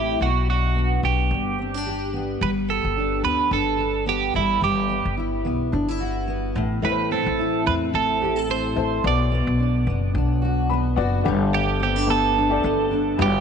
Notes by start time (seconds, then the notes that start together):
Already playing: A1 A2 E3 A3 C4 E4 G4
0.20 B1 B2 F#4
0.48 D4 F#4
0.75 B3
1.03 B1 G4
1.31 G1 G2
1.59 C4
1.74 D4
1.86 G4
2.13 B3
2.41 G1 G3 B4
2.68 B3 A4
2.84 G1
2.97 D4
3.23 D2 B3 B4
3.51 G1 D4 A4
3.78 A4
4.06 B3 G4
4.34 G1 G3 E4
4.61 G1 G3 G4
4.89 B3
5.05 G1
5.17 E4
5.45 B1 B3
5.72 G1 D4
5.88 E4
6.00 F#4
6.28 B3
6.55 A1 A2
6.82 A2 A3 E4 B4
6.91 C5
7.11 C4 A4
7.26 A1
7.39 E4
7.66 E2 C4 B4
7.93 A1 E4 A4
8.22 G4
8.36 A4
8.49 C4 C5
8.76 A1 A3 E4 A4 C5
9.03 B1 B2 B3 F#4 D5
9.07 D5
9.32 B3
9.47 B1
9.60 D4
9.87 F#1 B3
10.15 B1 D4
10.42 F#4
10.70 B3 B5
10.96 F#1 B3 F#4 D5 F#5
11.24 G1 G3 A3 D4 G4 A4 B4
11.53 B3 G4
11.80 C4 G4
11.96 D4
12.07 A3 B3 D4 G4 A4 B4
12.36 D4
12.49 A3 D4 G4 D5
12.63 G1 B3
12.91 D4
13.17 G1 G3 E4 F#4 B4
13.22 G4